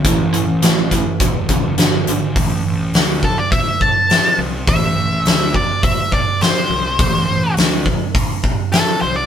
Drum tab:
HH |xxxxxxxx|o-o-o-o-|o-o-o-o-|o-o-o-o-|
SD |--o---o-|--o---o-|--o---o-|--o---o-|
BD |o--ooo--|o--ooo--|o--ooo--|o--ooo--|